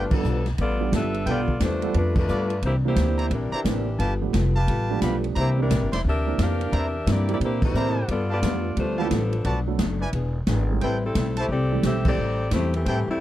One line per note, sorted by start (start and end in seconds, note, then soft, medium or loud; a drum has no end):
0.00 0.10 G1 medium
0.00 0.13 G3 soft
0.00 0.12 A3 medium
0.00 0.14 B3 soft
0.00 0.12 D4 medium
0.00 0.12 F4 medium
0.00 0.14 F4 soft
0.00 0.15 A4 soft
0.00 0.12 B4 medium
0.11 0.47 F3 medium
0.11 0.23 G3 medium
0.11 0.23 B3 medium
0.11 0.23 D4 medium
0.11 0.23 F4 medium
0.11 0.23 A4 medium
0.11 muted upright bass stroke soft
0.11 kick medium
0.11 crash medium
0.15 0.48 B3 medium
0.15 0.47 D4 medium
0.15 0.47 A4 medium
0.23 0.57 B1 medium
0.23 0.47 G3 medium
0.23 0.48 B3 medium
0.23 0.48 F4 medium
0.23 0.48 A4 medium
0.23 hi-hat pedal medium
0.46 snare soft
0.46 ride soft
0.58 0.91 A1 medium
0.58 0.81 G3 soft
0.58 0.82 B3 soft
0.58 0.91 B3 medium
0.58 0.82 F4 soft
0.58 0.91 F4 medium
0.58 0.91 A4 medium
0.58 0.91 D5 loud
0.58 kick soft
0.58 ride medium
0.62 0.83 A4 soft
0.80 1.24 G3 medium
0.80 1.24 B3 medium
0.80 1.24 D4 medium
0.80 1.24 F4 medium
0.80 1.24 G4 medium
0.92 1.25 G1 medium
0.92 1.15 G3 medium
0.92 1.16 B3 medium
0.92 1.28 D4 medium
0.92 1.16 F4 medium
0.92 1.17 A4 medium
0.92 1.28 A4 medium
0.92 1.28 B4 medium
0.92 1.28 E5 loud
0.92 kick soft
0.92 snare medium
0.92 hi-hat pedal medium
0.92 ride medium
1.14 ride soft
1.26 1.59 B1 medium
1.26 1.50 G3 soft
1.26 1.46 G3 medium
1.26 1.46 B3 soft
1.26 1.50 B3 soft
1.26 1.47 D4 soft
1.26 1.41 F4 medium
1.26 1.47 F4 soft
1.26 1.51 F4 soft
1.26 1.41 A4 medium
1.26 1.47 A4 medium
1.26 1.51 A4 medium
1.26 1.41 B4 medium
1.26 1.41 G5 medium
1.26 kick soft
1.26 ride medium
1.30 1.60 B3 medium
1.30 1.60 F4 medium
1.30 1.60 A4 medium
1.30 1.60 D5 medium
1.48 kick soft
1.60 1.93 E2 medium
1.60 1.83 G3 medium
1.60 1.96 A3 medium
1.60 1.84 B3 medium
1.60 1.96 D4 medium
1.60 1.84 F4 medium
1.60 1.96 F4 medium
1.60 1.84 A4 medium
1.60 1.96 C5 loud
1.60 kick soft
1.60 snare medium
1.60 hi-hat pedal medium
1.60 ride medium
1.82 1.93 G3 medium
1.82 1.94 B3 medium
1.82 1.93 D4 medium
1.82 1.94 F4 medium
1.82 1.94 A4 medium
1.82 ride soft
1.94 2.27 F2 medium
1.94 2.17 G3 soft
1.94 2.16 A3 medium
1.94 2.18 B3 soft
1.94 2.17 D4 medium
1.94 2.18 F4 soft
1.94 2.17 F4 medium
1.94 2.19 A4 soft
1.94 2.16 B4 medium
1.94 kick soft
1.94 ride medium
2.15 2.61 A3 medium
2.15 2.61 D4 medium
2.15 2.61 F4 medium
2.15 2.61 B4 medium
2.15 kick medium
2.15 crash medium
2.27 2.62 G2 medium
2.27 2.51 G3 medium
2.27 2.51 B3 medium
2.27 2.62 F4 medium
2.27 2.52 F4 medium
2.27 2.62 A4 medium
2.27 2.52 A4 medium
2.27 2.62 B4 medium
2.27 2.62 D5 medium
2.27 hi-hat pedal medium
2.50 ride soft
2.62 2.95 C2 medium
2.62 2.86 C3 soft
2.62 2.86 E3 soft
2.62 2.87 A#3 soft
2.62 2.87 D4 medium
2.62 2.75 E4 medium
2.62 2.75 C5 medium
2.62 kick soft
2.62 ride medium
2.66 2.75 A#3 medium
2.66 2.75 G4 medium
2.85 3.29 E3 medium
2.85 3.29 A#3 medium
2.85 3.29 C4 medium
2.85 3.29 D4 medium
2.85 3.29 E4 medium
2.85 3.29 G4 medium
2.85 3.30 G4 medium
2.85 3.30 C5 medium
2.96 3.30 D2 medium
2.96 3.20 C3 medium
2.96 3.20 E3 medium
2.96 3.20 A#3 medium
2.96 3.21 D4 medium
2.96 kick soft
2.96 snare medium
2.96 hi-hat pedal medium
2.96 ride medium
3.18 3.26 E4 medium
3.18 3.26 C5 medium
3.18 3.26 D5 medium
3.18 3.26 A#5 medium
3.18 ride soft
3.30 3.51 A#1 medium
3.30 3.54 C3 soft
3.30 3.55 E3 soft
3.30 3.54 G3 medium
3.30 3.55 A#3 soft
3.30 3.54 D4 medium
3.30 3.55 D4 medium
3.30 3.54 E4 medium
3.30 3.54 A#4 medium
3.30 kick soft
3.30 ride medium
3.52 4.19 E3 medium
3.52 3.97 A#3 medium
3.52 4.19 D4 medium
3.52 3.61 E4 medium
3.52 3.61 C5 medium
3.52 3.61 D5 medium
3.52 3.61 A#5 loud
3.52 muted upright bass stroke soft
3.56 4.19 G4 medium
3.64 3.98 A1 medium
3.64 3.88 C3 medium
3.64 3.85 E3 medium
3.64 3.88 E3 medium
3.64 3.85 A#3 medium
3.64 3.89 A#3 medium
3.64 3.85 C4 medium
3.64 3.85 D4 medium
3.64 3.89 D4 medium
3.64 3.85 G4 medium
3.64 kick soft
3.64 snare medium
3.64 hi-hat pedal medium
3.64 ride medium
3.99 4.32 G1 medium
3.99 4.22 G3 medium
3.99 4.22 B3 medium
3.99 4.23 F4 medium
3.99 4.14 G4 medium
3.99 4.23 A4 medium
3.99 4.14 B4 medium
3.99 4.14 F5 medium
3.99 4.14 A5 medium
3.99 kick soft
3.99 ride medium
4.22 4.32 F3 medium
4.22 4.32 A3 medium
4.22 4.33 B3 medium
4.22 4.32 D4 medium
4.22 4.33 G4 medium
4.33 4.66 F1 medium
4.33 4.56 G3 medium
4.33 4.56 B3 medium
4.33 4.57 F4 medium
4.33 4.57 A4 medium
4.33 kick soft
4.33 snare medium
4.33 hi-hat pedal medium
4.33 ride medium
4.55 4.99 G4 medium
4.55 4.99 B4 medium
4.55 4.99 F5 medium
4.55 4.99 A5 loud
4.67 5.01 A1 medium
4.67 4.91 G3 soft
4.67 4.91 B3 soft
4.67 4.92 F4 medium
4.67 4.92 A4 medium
4.67 kick soft
4.67 ride medium
4.90 5.34 F3 medium
4.90 5.34 A3 medium
4.90 5.34 B3 medium
4.90 5.34 D4 medium
4.90 5.34 G4 medium
5.01 5.35 B1 medium
5.01 5.25 G3 medium
5.01 5.25 B3 medium
5.01 5.25 F4 medium
5.01 5.17 G4 medium
5.01 5.26 A4 medium
5.01 5.17 B4 medium
5.01 5.17 F5 medium
5.01 5.17 B5 medium
5.01 kick soft
5.01 snare medium
5.01 hi-hat pedal medium
5.01 ride medium
5.24 ride soft
5.36 5.69 C2 medium
5.36 5.59 C3 soft
5.36 5.60 E3 soft
5.36 5.60 A#3 soft
5.36 5.60 D4 soft
5.36 5.51 E4 medium
5.36 5.50 C5 medium
5.36 5.51 D5 medium
5.36 5.51 A#5 loud
5.36 kick soft
5.36 ride medium
5.41 5.59 A#3 medium
5.41 5.59 E4 medium
5.41 5.59 G4 medium
5.41 5.59 C5 medium
5.58 5.69 E3 medium
5.58 5.69 A#3 medium
5.58 5.69 C4 medium
5.58 5.69 D4 medium
5.58 5.69 G4 medium
5.62 5.92 G3 medium
5.62 5.92 D4 medium
5.62 5.92 E4 medium
5.62 5.92 A#4 medium
5.70 5.82 A#1 medium
5.70 5.93 C3 medium
5.70 5.94 E3 medium
5.70 5.94 A#3 medium
5.70 5.94 D4 medium
5.70 kick soft
5.70 snare medium
5.70 hi-hat pedal medium
5.70 ride medium
5.82 5.92 G1 medium
5.92 6.04 E1 medium
5.92 6.01 E4 medium
5.92 6.00 C5 medium
5.92 6.01 D5 medium
5.92 6.00 C6 medium
5.92 snare soft
5.92 ride medium
6.04 6.38 D2 medium
6.04 6.27 C3 soft
6.04 6.27 E3 soft
6.04 6.28 A#3 soft
6.04 6.28 D4 soft
6.04 kick soft
6.09 6.39 D4 medium
6.09 6.39 G4 medium
6.09 6.39 A#4 medium
6.09 6.39 E5 medium
6.27 6.70 E3 medium
6.27 6.70 A#3 medium
6.27 6.71 C4 medium
6.27 6.71 D4 medium
6.27 6.71 A#4 medium
6.38 6.72 F2 medium
6.38 6.62 C3 medium
6.38 6.62 E3 medium
6.38 6.63 A#3 medium
6.38 6.63 D4 medium
6.38 kick soft
6.38 snare medium
6.38 hi-hat pedal medium
6.38 ride medium
6.43 6.75 D4 medium
6.43 6.75 G4 medium
6.43 6.75 A#4 medium
6.43 6.75 F5 loud
6.61 ride soft
6.72 7.06 E2 medium
6.72 6.96 C3 soft
6.72 6.96 E3 soft
6.72 6.96 A#3 soft
6.72 6.97 D4 medium
6.72 6.87 E4 medium
6.72 7.08 G4 medium
6.72 7.08 A#4 medium
6.72 6.87 C5 medium
6.72 6.87 D5 medium
6.72 6.87 A#5 medium
6.72 kick soft
6.72 ride medium
6.76 7.09 D4 medium
6.76 7.08 E5 loud
7.06 7.40 G2 medium
7.06 7.30 C3 medium
7.06 7.30 E3 medium
7.06 7.30 A#3 medium
7.06 7.31 D4 medium
7.06 kick soft
7.06 snare medium
7.06 hi-hat pedal medium
7.06 ride medium
7.11 7.31 A#3 medium
7.11 7.31 E4 medium
7.11 7.31 G4 medium
7.11 7.31 D5 medium
7.28 7.72 E3 medium
7.28 7.72 A#3 medium
7.28 7.72 C4 medium
7.28 7.73 D4 medium
7.28 7.73 G4 medium
7.28 ride soft
7.33 7.38 A#3 medium
7.33 7.38 E4 medium
7.33 7.38 G4 medium
7.33 7.38 D5 medium
7.40 7.73 A#2 medium
7.40 7.63 C3 soft
7.40 7.64 E3 soft
7.40 7.65 A#3 soft
7.40 7.65 D4 soft
7.40 kick soft
7.40 ride medium
7.45 7.63 A#3 medium
7.45 7.63 E4 medium
7.45 7.63 G4 medium
7.45 7.63 C5 medium
7.62 8.07 E4 medium
7.62 8.07 G4 medium
7.62 8.07 A#4 medium
7.62 8.07 C5 loud
7.62 kick medium
7.62 crash medium
7.74 8.08 A2 medium
7.74 7.98 C3 medium
7.74 7.98 E3 medium
7.74 7.95 E3 medium
7.74 7.95 A#3 soft
7.74 7.99 A#3 medium
7.74 7.95 C4 soft
7.74 7.95 D4 soft
7.74 7.99 D4 medium
7.74 8.09 E4 medium
7.74 7.95 A4 medium
7.74 8.09 C5 medium
7.74 8.09 D5 medium
7.74 8.09 A#5 medium
7.74 hi-hat pedal medium
8.08 8.42 G2 medium
8.08 8.32 G3 soft
8.08 8.33 B3 soft
8.08 8.31 B3 medium
8.08 8.33 F4 soft
8.08 8.31 F4 medium
8.08 8.31 A4 medium
8.08 8.34 A4 medium
8.08 8.30 D5 medium
8.08 kick soft
8.08 ride medium
8.30 8.75 B3 medium
8.30 8.75 F4 medium
8.30 8.39 G4 medium
8.30 8.75 A4 medium
8.30 8.39 B4 medium
8.30 8.75 D5 medium
8.30 8.39 F5 medium
8.30 8.39 A5 medium
8.42 8.76 F2 loud
8.42 8.95 F3 medium
8.42 8.67 G3 medium
8.42 8.95 A3 soft
8.42 8.95 B3 soft
8.42 8.67 B3 medium
8.42 8.95 D4 soft
8.42 8.67 F4 medium
8.42 8.95 G4 medium
8.42 8.67 A4 medium
8.42 kick soft
8.42 snare medium
8.42 hi-hat pedal medium
8.42 ride medium
8.77 9.10 D2 medium
8.77 9.00 G3 soft
8.77 9.00 A3 medium
8.77 9.01 B3 soft
8.77 8.99 D4 medium
8.77 9.01 F4 medium
8.77 9.00 F4 medium
8.77 9.02 A4 medium
8.77 9.00 C5 medium
8.77 kick soft
8.77 ride medium
8.98 9.10 F3 medium
8.98 9.64 F3 medium
8.98 9.10 A3 medium
8.98 9.10 B3 medium
8.98 9.64 B3 medium
8.98 9.10 D4 medium
8.98 9.64 D4 medium
8.98 9.11 E4 medium
8.98 9.07 G4 medium
8.98 9.64 A4 medium
8.98 9.07 B4 medium
8.98 9.07 F5 medium
8.98 9.07 A5 medium
9.11 9.44 A1 medium
9.11 9.34 G3 medium
9.11 9.35 B3 medium
9.11 9.35 F4 medium
9.11 9.35 A4 medium
9.11 kick soft
9.11 snare medium
9.11 hi-hat pedal medium
9.11 ride medium
9.33 ride soft
9.45 9.78 B1 medium
9.45 9.69 B2 medium
9.45 9.69 F#3 medium
9.45 9.69 A3 medium
9.45 9.60 F#4 medium
9.45 9.60 B4 medium
9.45 9.60 D5 medium
9.45 9.60 A5 medium
9.45 kick soft
9.45 ride medium
9.49 9.70 D4 medium
9.68 9.79 F#3 medium
9.68 9.79 A3 medium
9.68 9.79 B3 medium
9.68 9.79 D4 medium
9.68 9.79 A4 medium
9.79 10.12 F#1 medium
9.79 10.03 B2 medium
9.79 10.03 F#3 medium
9.79 10.03 A3 medium
9.79 10.04 D4 medium
9.79 kick soft
9.79 snare medium
9.79 hi-hat pedal medium
9.79 ride medium
10.01 10.09 E4 medium
10.01 10.09 B4 medium
10.01 10.09 D5 medium
10.01 10.09 G#5 medium
10.13 10.46 E1 medium
10.13 10.36 E3 soft
10.13 10.37 B3 medium
10.13 10.37 D4 soft
10.13 10.37 G#4 medium
10.13 kick soft
10.13 ride medium
10.47 10.80 G#1 medium
10.47 10.71 E3 medium
10.47 10.71 B3 medium
10.47 10.72 D4 medium
10.47 10.71 G#4 medium
10.47 kick soft
10.47 snare medium
10.47 hi-hat pedal medium
10.47 ride medium
10.70 10.81 E3 medium
10.70 10.81 G3 soft
10.70 10.81 A3 soft
10.70 10.81 C4 soft
10.70 10.81 G4 medium
10.81 11.14 A1 medium
10.81 11.05 A2 soft
10.81 11.05 G3 soft
10.81 11.03 G3 medium
10.81 11.06 C4 medium
10.81 11.03 C4 medium
10.81 10.97 E4 medium
10.81 11.03 E4 medium
10.81 11.06 E4 soft
10.81 10.96 A4 medium
10.81 11.03 B4 medium
10.81 10.97 C5 medium
10.81 10.97 G5 medium
10.81 kick soft
10.81 ride medium
11.06 11.36 G3 medium
11.06 11.37 C4 medium
11.06 11.36 E4 medium
11.06 11.36 A4 medium
11.15 11.48 B1 medium
11.15 11.39 A2 medium
11.15 11.39 G3 medium
11.15 11.40 C4 medium
11.15 11.40 E4 medium
11.15 kick soft
11.15 snare medium
11.15 hi-hat pedal medium
11.15 ride medium
11.37 11.50 A3 medium
11.37 11.46 E4 medium
11.37 11.50 E4 medium
11.37 11.51 G4 medium
11.37 11.46 A4 medium
11.37 11.46 C5 medium
11.37 11.50 C5 medium
11.37 11.46 A5 medium
11.37 ride medium
11.49 11.82 C2 medium
11.49 11.73 A2 soft
11.49 11.74 G3 soft
11.49 11.74 C4 soft
11.49 11.83 C4 medium
11.49 11.83 G4 medium
11.49 11.83 A4 medium
11.49 11.83 D5 loud
11.49 kick soft
11.54 11.75 E4 soft
11.72 12.16 E3 medium
11.72 12.16 G3 medium
11.72 12.16 A3 medium
11.72 12.16 C4 medium
11.72 12.16 G4 medium
11.83 12.16 B1 medium
11.83 12.07 A2 medium
11.83 12.08 G3 medium
11.83 12.08 C4 medium
11.83 12.05 C4 medium
11.83 12.08 E4 medium
11.83 12.06 G4 medium
11.83 12.06 A4 medium
11.83 12.06 E5 loud
11.83 kick soft
11.83 snare medium
11.83 hi-hat pedal medium
11.83 ride medium
12.05 12.50 C4 medium
12.05 12.50 G4 medium
12.05 12.50 A4 medium
12.05 12.50 D5 loud
12.05 kick medium
12.05 crash medium
12.18 12.51 A1 medium
12.18 12.41 A2 soft
12.18 12.42 G3 soft
12.18 12.42 C4 soft
12.18 12.43 E4 soft
12.51 12.85 E2 loud
12.51 12.76 A2 medium
12.51 12.76 G3 medium
12.51 12.74 A3 medium
12.51 12.76 C4 medium
12.51 12.73 E4 medium
12.51 12.77 E4 medium
12.51 12.74 G4 medium
12.51 12.74 C5 medium
12.51 kick soft
12.51 snare medium
12.51 hi-hat pedal medium
12.51 ride medium
12.74 12.87 E3 medium
12.74 12.86 A3 medium
12.74 12.86 C4 medium
12.74 12.86 G4 medium
12.74 ride soft
12.85 13.06 A2 medium
12.85 13.10 A2 soft
12.85 13.08 E3 medium
12.85 13.10 G3 medium
12.85 13.08 A3 medium
12.85 13.10 C4 medium
12.85 13.08 C4 medium
12.85 13.01 E4 medium
12.85 13.11 E4 soft
12.85 13.08 G4 medium
12.85 13.01 A4 medium
12.85 13.00 C5 medium
12.85 13.01 G5 medium
12.85 kick soft
12.85 ride medium
13.08 13.20 G3 medium
13.08 13.20 A3 medium
13.08 13.20 C4 medium
13.08 13.20 E4 medium
13.08 muted upright bass stroke soft